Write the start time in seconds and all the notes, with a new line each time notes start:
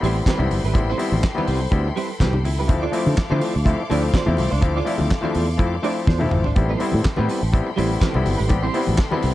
Already playing: A4 G5 B5 C6
0.01 A1 G3 B3 C4 E4, open hi-hat
0.05 E4 C5
0.17 muted clean electric guitar stroke
0.26 G3 C4 E4 B4, kick, snare, clap, closed hi-hat, muted conga, high conga
0.38 C2 G3 B3 C4 E4, muted clean electric guitar stroke, low conga
0.51 G1, muted clean electric guitar stroke, open hi-hat, high conga
0.64 G#1 G3 C4 E4 B4
0.73 A1 G3 B3 C4 E4, kick, closed hi-hat, muted conga, low conga
0.78 muted clean electric guitar stroke
0.90 G3 C4 E4 C5
0.98 G3 B3 C4 E4, open hi-hat, muted conga
1.02 C5
1.12 A1, muted clean electric guitar stroke, high conga
1.23 muted clean electric guitar stroke, kick, snare, clap, closed hi-hat
1.35 G3 B3 C4 E4 B4, high conga
1.39 G3 C4
1.47 C2 G3 C4 C5, open hi-hat, muted conga
1.52 E4 B4
1.62 muted clean electric guitar stroke
1.71 D2 G3 B3 C4 E4 E5, kick, closed hi-hat
1.87 muted clean electric guitar stroke
1.96 G3 C4 E4 B4 C5, open hi-hat, muted conga
2.11 muted clean electric guitar stroke
2.20 C2 G3 C4 E4 G4 B4 G5, kick, snare, clap, closed hi-hat, muted conga, high conga
2.33 muted clean electric guitar stroke, low conga
2.44 C#2 E4, muted clean electric guitar stroke, open hi-hat, high conga
2.59 G3 C4 E4 B4
2.68 D2 F3 A3 C4 E4 F5 C6 D6, muted clean electric guitar stroke, kick, closed hi-hat, muted conga, low conga
2.82 A3 D4 F4 D5
2.92 F3 A3 C4 D4 E4 F4 D5, open hi-hat, muted conga
3.06 D3, muted clean electric guitar stroke, high conga
3.17 muted clean electric guitar stroke, kick, snare, clap, closed hi-hat
3.30 D3 F3 A3 C4 D4 E4 F4 C5, high conga
3.41 A3 D4 F4 C5, open hi-hat
3.56 D2, muted clean electric guitar stroke
3.65 F3 A3 C4 E4, kick, closed hi-hat, muted conga
3.79 muted clean electric guitar stroke
3.90 D2 F3 A3 C4 D4 E4 F4 D5, open hi-hat, muted conga
4.04 muted clean electric guitar stroke
4.14 A3 D4 F4 C5, kick, snare, clap, closed hi-hat, high conga
4.26 E2 F3 A3 C4 E4, muted clean electric guitar stroke, low conga
4.37 C2, muted clean electric guitar stroke, open hi-hat, muted conga, high conga
4.50 C#2 A3 D4 F4 C5
4.61 D2 F3 A3 C4 E4, kick, closed hi-hat, low conga
4.76 A3 D4 F4 D5
4.85 F3 A3 C4 D4 E4 F4 D5, open hi-hat, muted conga
4.98 D2, muted clean electric guitar stroke, high conga
5.10 muted clean electric guitar stroke, kick, snare, clap, closed hi-hat
5.21 F3 A3 C4 D4 E4 F4 C5, high conga
5.35 E2 A3 D4 F4 C5, open hi-hat, muted conga
5.48 muted clean electric guitar stroke
5.58 F2 F3 A3 C4 E4, kick, closed hi-hat, muted conga
5.73 muted clean electric guitar stroke
5.83 F3 A3 C4 D4 E4 F4 D5 E5, open hi-hat
5.96 muted clean electric guitar stroke
6.06 E2 A3 D4 F4 C5, kick, snare, muted conga, high conga
6.19 F3 A3 C4 E4, muted clean electric guitar stroke, high tom, low conga
6.31 G#1, muted clean electric guitar stroke, mid tom, high conga
6.44 A3 D4 F4 C5, floor tom
6.56 A1 G3 B3 C4 E4 G5 B5 C6, muted clean electric guitar stroke, kick, closed hi-hat, low conga
6.69 G3 C4 E4 C5
6.79 G3 B3 C4 E4 C5, open hi-hat, muted conga
6.92 A2, muted clean electric guitar stroke, high conga
7.03 muted clean electric guitar stroke, muted fingered electric bass stroke, kick, snare, clap, closed hi-hat, muted conga
7.16 A2 G3 B3 C4 E4 B4, high conga
7.28 G3 C4 E4 B4, open hi-hat, muted conga
7.41 A1, muted clean electric guitar stroke
7.52 G3 B3 C4 E4, kick, closed hi-hat
7.66 muted clean electric guitar stroke
7.76 A1 G3 B3 C4 E4 C5, open hi-hat, muted conga
7.89 muted clean electric guitar stroke
8.00 G3 C4 E4 B4, kick, snare, clap, closed hi-hat, muted conga, high conga
8.13 C2 G3 B3 C4 E4, muted clean electric guitar stroke, low conga
8.25 G1, muted clean electric guitar stroke, open hi-hat, muted conga, high conga
8.37 G#1 G3 C4 E4 B4
8.49 A1 G3 B3 C4 G4, muted clean electric guitar stroke, kick, closed hi-hat, low conga
8.63 G3 C4 E4 C5
8.74 G3 B3 C4 E4 C5, open hi-hat, muted conga
8.87 A1, muted clean electric guitar stroke, high conga
8.97 muted clean electric guitar stroke, kick, snare, clap, closed hi-hat
9.11 G3 B3 C4 E4 B4, high conga
9.23 C2 G3 C4 E4 B4, open hi-hat